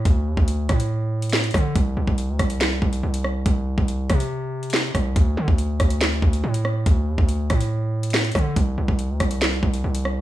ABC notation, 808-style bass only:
X:1
M:4/4
L:1/16
Q:1/4=141
K:Cdor
V:1 name="808-style bass" clef=bass
D,,2 E,, D,,3 A,,8 D,2 | C,,2 C,, C,,2 D,, C,,4 C,,2 C,,4 | C,,3 C,,3 C,8 C,,2 | D,,2 D, D,,3 D,,4 D,,2 A,,4 |
D,,2 E,, D,,3 A,,8 D,2 | C,,2 C,, C,,2 D,, C,,4 C,,2 C,,4 |]